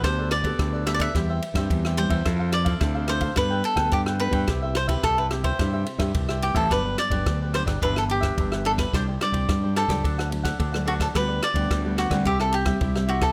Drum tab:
RD |x-xxx-xxx-xxx-xx|x-xxx-xxx-xxx-xx|x-xxx-xxx-xxx-xx|x-xxx-xxx-xxx-xx|
SD |r-r-r-r-r--r-r--|r-r-r-r-r--r-r--|r-r-r-r-r--r-r--|r-r-r-rr-r-r-r-r|
BD |o--oo--oo--oo--o|o--oo--oo--oo--o|o--oo--oo--oo--o|o--oo--oo--oo--o|

RD |x-xxx-xxx-xxx-xx|x-xxx-xxx-xxx-xx|
SD |r-r-r-rr-r-r-r-r|r-r-r-rr-r-r-r-r|
BD |o--oo--oo--oo--o|o--oo--oo--oo--o|